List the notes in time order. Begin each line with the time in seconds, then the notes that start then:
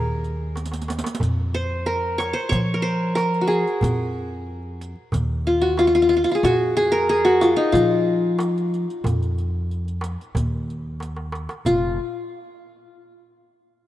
Already playing: D#2 G#4 A#4
0.23 riq, darbuka ka
0.56 riq, darbuka tek
0.66 riq
0.72 riq, darbuka ka
0.82 riq
0.88 riq, darbuka tek
0.98 riq
1.04 riq, darbuka ka
1.15 riq
1.20 F2, riq, darbuka dum
1.36 darbuka ka
1.53 C5, darbuka ka
1.86 A#4, darbuka ka
2.03 darbuka ka
2.18 C#5, riq, darbuka tek
2.33 C5
2.49 F3 C#5, riq, darbuka dum
2.74 A#4
2.82 C5, darbuka ka
3.15 A#4, riq, darbuka tek
3.33 riq, darbuka ka
3.41 F#4
3.48 G#4, riq, darbuka ka
3.67 riq
3.81 F2, riq, darbuka dum
4.14 darbuka ka
4.47 darbuka ka
4.63 darbuka ka
4.81 riq
4.96 darbuka ka
5.12 D#2, riq, darbuka dum
5.44 F4, darbuka ka
5.62 F#4
5.77 F4, riq, darbuka tek
5.87 F4
5.95 F4, riq
6.02 F4
6.09 F4
6.13 F4, riq
6.24 F4
6.29 F4, riq
6.35 G#4
6.43 F2 F#4, riq, darbuka dum
6.60 darbuka ka
6.76 G#4, darbuka ka
6.92 A#4
7.09 G#4
7.25 F#4
7.41 F4, riq, darbuka tek
7.56 D#4, darbuka ka
7.72 F3 F4, riq, darbuka dum
8.07 darbuka ka
8.39 riq, darbuka tek
8.56 riq, darbuka ka
8.74 riq
8.90 riq
9.04 F2, riq, darbuka dum
9.21 riq, darbuka ka
9.37 riq, darbuka ka
9.69 riq, darbuka ka
9.85 riq, darbuka ka
10.01 riq, darbuka tek
10.18 riq, darbuka ka
10.35 D#2, riq, darbuka dum
10.68 riq, darbuka ka
11.00 riq, darbuka tek
11.16 darbuka ka
11.32 riq, darbuka tek
11.49 riq, darbuka ka
11.65 F1 F4, riq, darbuka dum